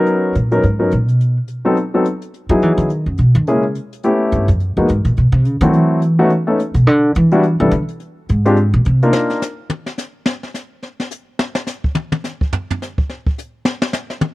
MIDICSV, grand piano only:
0, 0, Header, 1, 2, 480
1, 0, Start_track
1, 0, Tempo, 283420
1, 95, Time_signature, 4, 2, 24, 8
1, 24288, End_track
2, 0, Start_track
2, 0, Title_t, "Grand piano"
2, 0, Program_c, 0, 0
2, 0, Note_on_c, 0, 54, 65
2, 0, Note_on_c, 0, 59, 56
2, 0, Note_on_c, 0, 61, 58
2, 0, Note_on_c, 0, 63, 60
2, 0, Note_on_c, 0, 70, 69
2, 546, Note_off_c, 0, 54, 0
2, 547, Note_off_c, 0, 59, 0
2, 548, Note_off_c, 0, 61, 0
2, 551, Note_off_c, 0, 63, 0
2, 554, Note_off_c, 0, 70, 0
2, 870, Note_on_c, 0, 54, 53
2, 877, Note_on_c, 0, 59, 56
2, 877, Note_on_c, 0, 63, 52
2, 880, Note_on_c, 0, 61, 54
2, 884, Note_on_c, 0, 70, 67
2, 1042, Note_off_c, 0, 54, 0
2, 1045, Note_off_c, 0, 59, 0
2, 1045, Note_off_c, 0, 63, 0
2, 1047, Note_off_c, 0, 61, 0
2, 1049, Note_off_c, 0, 70, 0
2, 1340, Note_on_c, 0, 54, 52
2, 1340, Note_on_c, 0, 59, 46
2, 1346, Note_on_c, 0, 63, 48
2, 1349, Note_on_c, 0, 61, 51
2, 1349, Note_on_c, 0, 70, 56
2, 1517, Note_off_c, 0, 54, 0
2, 1517, Note_off_c, 0, 59, 0
2, 1520, Note_off_c, 0, 63, 0
2, 1521, Note_off_c, 0, 61, 0
2, 1522, Note_off_c, 0, 70, 0
2, 2790, Note_on_c, 0, 54, 62
2, 2795, Note_on_c, 0, 59, 60
2, 2797, Note_on_c, 0, 60, 58
2, 2801, Note_on_c, 0, 63, 56
2, 2806, Note_on_c, 0, 69, 67
2, 2963, Note_off_c, 0, 54, 0
2, 2965, Note_off_c, 0, 59, 0
2, 2966, Note_off_c, 0, 60, 0
2, 2968, Note_off_c, 0, 63, 0
2, 2971, Note_off_c, 0, 69, 0
2, 3285, Note_on_c, 0, 54, 58
2, 3291, Note_on_c, 0, 59, 53
2, 3292, Note_on_c, 0, 60, 51
2, 3293, Note_on_c, 0, 63, 49
2, 3297, Note_on_c, 0, 69, 62
2, 3451, Note_off_c, 0, 54, 0
2, 3453, Note_off_c, 0, 59, 0
2, 3454, Note_off_c, 0, 60, 0
2, 3455, Note_off_c, 0, 63, 0
2, 3456, Note_off_c, 0, 69, 0
2, 4236, Note_on_c, 0, 54, 58
2, 4236, Note_on_c, 0, 63, 51
2, 4238, Note_on_c, 0, 64, 51
2, 4246, Note_on_c, 0, 59, 49
2, 4246, Note_on_c, 0, 68, 66
2, 4868, Note_off_c, 0, 54, 0
2, 4868, Note_off_c, 0, 63, 0
2, 4868, Note_off_c, 0, 64, 0
2, 4872, Note_off_c, 0, 59, 0
2, 4873, Note_off_c, 0, 68, 0
2, 5888, Note_on_c, 0, 61, 59
2, 5890, Note_on_c, 0, 56, 61
2, 5890, Note_on_c, 0, 58, 54
2, 5892, Note_on_c, 0, 64, 56
2, 5896, Note_on_c, 0, 68, 65
2, 6131, Note_off_c, 0, 61, 0
2, 6132, Note_off_c, 0, 56, 0
2, 6132, Note_off_c, 0, 58, 0
2, 6133, Note_off_c, 0, 64, 0
2, 6135, Note_off_c, 0, 68, 0
2, 6840, Note_on_c, 0, 59, 51
2, 6846, Note_on_c, 0, 64, 59
2, 6848, Note_on_c, 0, 57, 61
2, 6851, Note_on_c, 0, 61, 53
2, 6852, Note_on_c, 0, 67, 66
2, 7539, Note_off_c, 0, 59, 0
2, 7542, Note_off_c, 0, 64, 0
2, 7543, Note_off_c, 0, 57, 0
2, 7544, Note_off_c, 0, 61, 0
2, 7545, Note_off_c, 0, 67, 0
2, 8086, Note_on_c, 0, 66, 59
2, 8088, Note_on_c, 0, 56, 58
2, 8088, Note_on_c, 0, 58, 50
2, 8088, Note_on_c, 0, 59, 53
2, 8092, Note_on_c, 0, 63, 53
2, 8252, Note_off_c, 0, 66, 0
2, 8253, Note_off_c, 0, 56, 0
2, 8253, Note_off_c, 0, 59, 0
2, 8254, Note_off_c, 0, 58, 0
2, 8255, Note_off_c, 0, 63, 0
2, 9509, Note_on_c, 0, 54, 58
2, 9510, Note_on_c, 0, 64, 55
2, 9513, Note_on_c, 0, 57, 59
2, 9517, Note_on_c, 0, 60, 58
2, 9525, Note_on_c, 0, 66, 67
2, 10144, Note_off_c, 0, 54, 0
2, 10144, Note_off_c, 0, 64, 0
2, 10146, Note_off_c, 0, 57, 0
2, 10148, Note_off_c, 0, 60, 0
2, 10152, Note_off_c, 0, 66, 0
2, 10481, Note_on_c, 0, 59, 62
2, 10482, Note_on_c, 0, 63, 57
2, 10484, Note_on_c, 0, 66, 78
2, 10486, Note_on_c, 0, 61, 57
2, 10488, Note_on_c, 0, 57, 69
2, 10649, Note_off_c, 0, 59, 0
2, 10650, Note_off_c, 0, 63, 0
2, 10651, Note_off_c, 0, 66, 0
2, 10652, Note_off_c, 0, 61, 0
2, 10653, Note_off_c, 0, 57, 0
2, 10959, Note_on_c, 0, 57, 61
2, 10961, Note_on_c, 0, 59, 51
2, 10961, Note_on_c, 0, 69, 61
2, 10967, Note_on_c, 0, 63, 51
2, 10969, Note_on_c, 0, 61, 57
2, 11129, Note_off_c, 0, 57, 0
2, 11130, Note_off_c, 0, 59, 0
2, 11130, Note_off_c, 0, 69, 0
2, 11133, Note_off_c, 0, 63, 0
2, 11134, Note_off_c, 0, 61, 0
2, 12393, Note_on_c, 0, 55, 70
2, 12402, Note_on_c, 0, 59, 62
2, 12402, Note_on_c, 0, 62, 66
2, 12403, Note_on_c, 0, 64, 62
2, 12404, Note_on_c, 0, 66, 78
2, 12565, Note_off_c, 0, 55, 0
2, 12570, Note_off_c, 0, 59, 0
2, 12570, Note_off_c, 0, 62, 0
2, 12570, Note_off_c, 0, 64, 0
2, 12571, Note_off_c, 0, 66, 0
2, 12872, Note_on_c, 0, 62, 59
2, 12872, Note_on_c, 0, 64, 54
2, 12872, Note_on_c, 0, 69, 72
2, 12877, Note_on_c, 0, 55, 59
2, 12878, Note_on_c, 0, 59, 54
2, 13044, Note_off_c, 0, 62, 0
2, 13044, Note_off_c, 0, 64, 0
2, 13044, Note_off_c, 0, 69, 0
2, 13047, Note_off_c, 0, 55, 0
2, 13048, Note_off_c, 0, 59, 0
2, 14318, Note_on_c, 0, 60, 61
2, 14321, Note_on_c, 0, 62, 63
2, 14323, Note_on_c, 0, 56, 68
2, 14328, Note_on_c, 0, 65, 59
2, 14330, Note_on_c, 0, 67, 75
2, 14487, Note_off_c, 0, 60, 0
2, 14489, Note_off_c, 0, 56, 0
2, 14489, Note_off_c, 0, 62, 0
2, 14492, Note_off_c, 0, 65, 0
2, 14493, Note_off_c, 0, 67, 0
2, 15288, Note_on_c, 0, 58, 65
2, 15290, Note_on_c, 0, 63, 55
2, 15292, Note_on_c, 0, 62, 60
2, 15293, Note_on_c, 0, 65, 59
2, 15300, Note_on_c, 0, 70, 73
2, 15912, Note_off_c, 0, 58, 0
2, 15913, Note_off_c, 0, 63, 0
2, 15914, Note_off_c, 0, 62, 0
2, 15915, Note_off_c, 0, 65, 0
2, 15918, Note_off_c, 0, 70, 0
2, 24288, End_track
0, 0, End_of_file